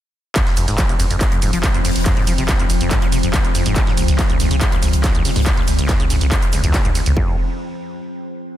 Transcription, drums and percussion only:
0.36 kick, clap, closed hi-hat, ride, shaker
0.47 snare, ride
0.56 open hi-hat, ride, shaker
0.68 snare, closed hi-hat, ride, shaker
0.78 kick, snare, clap, closed hi-hat, ride, shaker
0.89 ride, shaker
0.99 snare, open hi-hat, ride, shaker
1.11 closed hi-hat, ride, shaker
1.21 kick, clap, closed hi-hat, ride, shaker
1.32 closed hi-hat, ride
1.42 open hi-hat, ride, shaker
1.53 closed hi-hat, ride, shaker
1.63 kick, snare, clap, closed hi-hat, ride, shaker
1.74 ride, shaker
1.85 open hi-hat, ride, shaker
1.95 snare, closed hi-hat, ride, shaker
2.05 kick, clap, closed hi-hat, ride, shaker
2.17 ride
2.27 open hi-hat, ride, shaker
2.38 closed hi-hat, ride, shaker
2.48 kick, snare, clap, closed hi-hat, ride, shaker
2.59 ride, shaker
2.70 open hi-hat, ride, shaker
2.81 closed hi-hat, ride, shaker
2.91 kick, clap, closed hi-hat, ride, shaker
3.02 closed hi-hat, ride
3.12 open hi-hat, ride, shaker
3.23 closed hi-hat, ride, shaker
3.33 kick, snare, clap, closed hi-hat, ride, shaker
3.45 ride, shaker
3.55 open hi-hat, ride, shaker
3.66 closed hi-hat, ride, shaker
3.76 kick, clap, closed hi-hat, ride, shaker
3.87 snare, ride
3.97 open hi-hat, ride, shaker
4.08 snare, closed hi-hat, ride, shaker
4.19 kick, snare, clap, closed hi-hat, ride, shaker
4.30 ride, shaker
4.40 snare, open hi-hat, ride, shaker
4.51 closed hi-hat, ride, shaker
4.61 kick, clap, closed hi-hat, ride, shaker
4.72 closed hi-hat, ride
4.82 open hi-hat, ride, shaker
4.93 closed hi-hat, ride, shaker
5.04 kick, snare, clap, closed hi-hat, ride, shaker
5.15 ride, shaker
5.25 open hi-hat, ride, shaker
5.36 snare, closed hi-hat, ride, shaker
5.46 kick, clap, closed hi-hat, ride, shaker
5.57 ride
5.67 open hi-hat, ride, shaker
5.79 closed hi-hat, ride, shaker
5.89 kick, snare, clap, closed hi-hat, ride, shaker
6.00 ride, shaker
6.10 open hi-hat, ride, shaker
6.21 closed hi-hat, ride, shaker
6.32 kick, clap, closed hi-hat, ride, shaker
6.42 closed hi-hat, ride, shaker
6.52 open hi-hat, ride, shaker
6.64 closed hi-hat, ride, shaker
6.74 kick, snare, clap, closed hi-hat, ride, shaker
6.85 ride, shaker
6.95 open hi-hat, ride, shaker
7.06 closed hi-hat, ride, shaker
7.17 kick

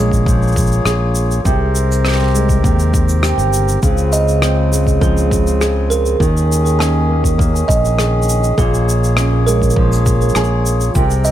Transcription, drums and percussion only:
0.12 kick, shaker
0.26 kick, shaker
0.42 shaker
0.48 shaker
0.52 shaker
0.56 kick, shaker
0.67 shaker
0.72 shaker
0.86 cross-stick, shaker
1.15 shaker
1.31 shaker
1.45 kick, shaker
1.75 shaker
1.92 shaker
2.05 cross-stick
2.08 cross-stick
2.12 cross-stick
2.16 cross-stick
2.19 cross-stick
2.23 cross-stick
2.27 cross-stick
2.30 cross-stick
2.35 shaker
2.49 kick, shaker
2.64 kick, shaker
2.79 shaker
2.94 kick, shaker
3.09 shaker
3.23 cross-stick, shaker
3.39 shaker
3.53 shaker
3.69 shaker
3.83 kick, shaker
3.98 shaker
4.13 shaker
4.28 shaker
4.42 cross-stick, shaker
4.73 shaker
4.87 kick, shaker
5.02 kick, shaker
5.17 shaker
5.31 kick, shaker
5.47 shaker
5.61 cross-stick, shaker
5.91 shaker
6.06 shaker
6.20 kick, shaker
6.37 shaker
6.52 shaker
6.66 shaker
6.80 cross-stick, shaker
7.24 kick, shaker
7.39 kick, shaker
7.56 shaker
7.69 kick, shaker
7.85 shaker
7.99 cross-stick, shaker
8.22 shaker
8.29 shaker
8.44 shaker
8.58 kick, shaker
8.74 shaker
8.89 shaker
9.04 shaker
9.17 cross-stick, shaker
9.48 shaker
9.62 kick, shaker
9.70 shaker
9.76 kick
9.92 shaker
10.06 kick, shaker
10.22 shaker
10.29 shaker
10.35 cross-stick, shaker
10.44 shaker
10.66 shaker
10.81 shaker
10.95 kick, shaker
11.10 shaker
11.25 shaker

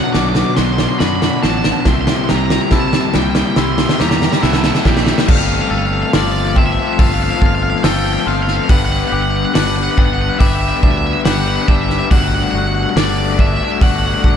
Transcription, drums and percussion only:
0.14 snare
0.35 snare
0.57 snare
0.78 snare
1.00 snare
1.22 snare
1.43 snare
1.64 snare
1.85 kick, snare
2.07 snare
2.29 snare
2.50 snare
2.71 kick, snare
2.93 snare
3.14 snare
3.35 snare
3.56 snare
3.78 snare
3.89 snare
4.00 snare
4.11 snare
4.22 snare
4.33 snare
4.43 snare
4.53 snare
4.64 snare
4.75 snare
4.85 kick, snare
4.97 snare
5.07 snare
5.18 snare
5.28 kick, crash
6.13 snare, open hi-hat
6.56 kick
6.99 kick, open hi-hat
7.42 kick
7.84 snare, open hi-hat
8.48 snare
8.69 kick, open hi-hat
9.55 snare, open hi-hat
9.98 kick
10.41 kick, open hi-hat
10.83 kick
11.25 snare, open hi-hat
11.68 kick
11.90 snare
12.11 kick, open hi-hat
12.97 snare, open hi-hat
13.39 kick
13.81 kick, open hi-hat
14.24 kick

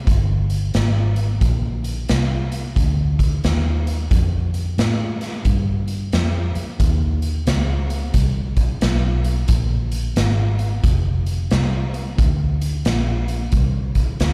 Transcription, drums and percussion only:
0.07 kick, closed hi-hat
0.50 closed hi-hat
0.74 snare, closed hi-hat
1.16 closed hi-hat
1.41 kick, closed hi-hat
1.84 closed hi-hat
2.09 snare, closed hi-hat
2.52 closed hi-hat
2.76 kick, closed hi-hat
3.19 kick, closed hi-hat
3.44 snare, closed hi-hat
3.87 closed hi-hat
4.11 kick, closed hi-hat
4.54 closed hi-hat
4.78 snare, closed hi-hat
5.21 snare, closed hi-hat
5.45 kick, closed hi-hat
5.88 closed hi-hat
6.12 snare, closed hi-hat
6.55 closed hi-hat
6.80 kick, closed hi-hat
7.22 closed hi-hat
7.47 snare, closed hi-hat
7.90 closed hi-hat
8.14 kick, closed hi-hat
8.57 kick, closed hi-hat
8.81 snare, closed hi-hat
9.24 closed hi-hat
9.48 kick, closed hi-hat
9.92 closed hi-hat
10.16 snare, closed hi-hat
10.59 closed hi-hat
10.84 kick, closed hi-hat
11.26 closed hi-hat
11.51 snare, closed hi-hat
11.94 closed hi-hat
12.18 kick, closed hi-hat
12.61 closed hi-hat
12.85 snare, closed hi-hat
13.28 closed hi-hat
13.52 kick, closed hi-hat
13.95 kick, closed hi-hat
14.20 snare, closed hi-hat

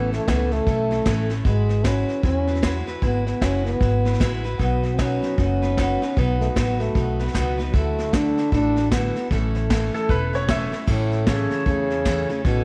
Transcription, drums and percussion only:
0.12 snare
0.28 kick, snare, hi-hat pedal
0.51 snare
0.66 kick, snare
0.91 snare
1.06 kick, snare, hi-hat pedal
1.30 snare
1.45 kick, snare
1.69 snare
1.84 kick, snare, hi-hat pedal
2.08 snare
2.23 kick, snare
2.47 snare
2.55 snare
2.63 kick, snare, hi-hat pedal
2.87 snare
3.02 kick, snare
3.27 snare
3.41 kick, snare, hi-hat pedal
3.66 snare
3.81 kick, snare
4.05 snare
4.13 snare
4.20 kick, snare, hi-hat pedal
4.45 snare
4.59 kick, snare
4.83 snare
4.99 kick, snare, hi-hat pedal
5.22 snare
5.38 kick, snare
5.62 snare
5.78 kick, snare, hi-hat pedal
6.02 snare
6.17 kick, snare
6.41 snare
6.56 kick, snare, hi-hat pedal
6.80 snare
6.95 kick, snare
7.19 snare
7.27 snare
7.35 kick, snare, hi-hat pedal
7.59 snare
7.74 kick, snare
7.98 snare
8.13 kick, snare, hi-hat pedal
8.38 snare
8.52 kick, snare
8.76 snare
8.91 kick, snare, hi-hat pedal
9.15 snare
9.31 kick, snare
9.55 snare
9.70 kick, snare, hi-hat pedal
9.94 snare
10.09 kick, snare
10.33 snare
10.48 kick, snare, hi-hat pedal
10.72 snare
10.87 kick, snare, crash
11.12 snare
11.27 kick, snare, hi-hat pedal
11.51 snare
11.66 kick, snare
11.90 snare
12.05 kick, snare, hi-hat pedal
12.29 snare
12.45 kick, snare

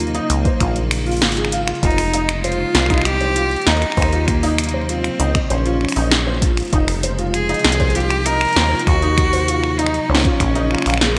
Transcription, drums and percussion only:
0.07 closed hi-hat
0.15 closed hi-hat
0.30 closed hi-hat
0.45 kick, closed hi-hat
0.60 finger snap, kick, closed hi-hat
0.76 closed hi-hat
0.91 finger snap, open hi-hat
1.06 open hi-hat
1.11 open hi-hat
1.17 open hi-hat
1.22 snare, closed hi-hat, open hi-hat
1.27 open hi-hat
1.32 open hi-hat
1.37 closed hi-hat
1.45 finger snap
1.52 closed hi-hat
1.68 finger snap, closed hi-hat
1.75 closed hi-hat
1.83 kick, closed hi-hat
1.91 closed hi-hat
1.98 finger snap, open hi-hat
2.14 closed hi-hat
2.29 finger snap, closed hi-hat
2.44 closed hi-hat
2.52 closed hi-hat
2.75 finger snap, snare, closed hi-hat
2.79 finger snap
2.82 finger snap
2.86 finger snap, kick
2.90 finger snap, closed hi-hat
2.94 finger snap
2.98 finger snap
3.02 finger snap
3.05 finger snap, closed hi-hat
3.21 closed hi-hat
3.36 closed hi-hat
3.51 closed hi-hat
3.56 closed hi-hat
3.62 closed hi-hat
3.67 snare, closed hi-hat
3.77 closed hi-hat
3.82 finger snap, closed hi-hat
3.92 finger snap
3.97 kick, open hi-hat
4.02 finger snap
4.13 closed hi-hat
4.28 finger snap, kick, closed hi-hat
4.43 open hi-hat
4.58 finger snap, closed hi-hat
4.64 closed hi-hat
4.69 closed hi-hat
4.89 closed hi-hat
5.04 finger snap, closed hi-hat
5.20 closed hi-hat
5.35 finger snap, kick, closed hi-hat
5.50 closed hi-hat
5.66 closed hi-hat
5.81 finger snap
5.85 finger snap
5.89 finger snap, open hi-hat
5.92 finger snap, open hi-hat
6.12 finger snap, snare, closed hi-hat
6.42 kick, closed hi-hat
6.57 finger snap, closed hi-hat
6.60 closed hi-hat
6.63 closed hi-hat
6.65 closed hi-hat
6.68 closed hi-hat
6.70 closed hi-hat
6.73 kick, closed hi-hat
6.88 finger snap, open hi-hat
7.03 closed hi-hat
7.19 closed hi-hat
7.34 finger snap, closed hi-hat
7.49 closed hi-hat
7.54 closed hi-hat
7.59 closed hi-hat
7.64 finger snap, snare, closed hi-hat
7.70 closed hi-hat
7.72 closed hi-hat
7.75 closed hi-hat
7.80 kick, closed hi-hat
7.90 closed hi-hat
7.95 closed hi-hat
8.00 closed hi-hat
8.10 finger snap, closed hi-hat
8.26 closed hi-hat
8.41 finger snap, closed hi-hat
8.45 closed hi-hat
8.49 closed hi-hat
8.53 snare, closed hi-hat
8.56 closed hi-hat
8.79 closed hi-hat
8.87 finger snap, kick, open hi-hat
9.02 closed hi-hat
9.18 finger snap, kick, closed hi-hat
9.33 open hi-hat
9.48 closed hi-hat
9.64 finger snap
9.79 closed hi-hat
9.86 finger snap
9.94 closed hi-hat
10.15 snare
10.17 snare
10.20 snare
10.22 kick, snare, closed hi-hat
10.40 finger snap, kick, closed hi-hat
10.55 closed hi-hat
10.71 finger snap
10.75 finger snap
10.78 finger snap
10.82 finger snap
10.86 finger snap, open hi-hat
10.90 finger snap
10.94 finger snap
10.97 finger snap, snare, closed hi-hat

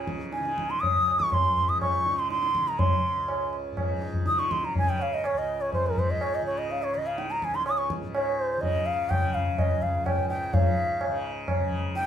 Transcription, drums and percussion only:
0.07 tabla ke
0.33 tabla te
0.45 tabla te
0.58 tabla ke
0.70 tabla te
0.83 tabla tin, tabla ge
1.08 tabla na
1.20 tabla ke
1.32 tabla na, tabla ge
1.57 tabla ge
1.81 tabla na, tabla ge
2.06 tabla te
2.30 tabla te
2.43 tabla te
2.55 tabla ke
2.67 tabla te
2.79 tabla tin, tabla ge
3.28 tabla na
3.53 tabla na
3.77 tabla na, tabla ge
4.02 tabla te
4.14 tabla ge
4.26 tabla te
4.38 tabla te
4.51 tabla ke
4.63 tabla te
4.75 tabla tin, tabla ge
4.99 tabla na
5.24 tabla na
5.73 tabla na, tabla ge
5.97 tabla ge
6.21 tabla na
6.69 tabla tin
7.18 tabla te
7.30 tabla te
7.42 tabla ke
7.54 tabla te
7.66 tabla na
7.90 tabla ke
8.15 tabla na
8.63 tabla tin, tabla ge
9.11 tabla na, tabla ge
9.35 tabla ge
9.58 tabla na, tabla ge
9.83 tabla ge
10.06 tabla na, tabla ge
10.30 tabla te
10.54 tabla tin, tabla ge
11.01 tabla na
11.48 tabla na, tabla ge
11.72 tabla ge
11.95 tabla te

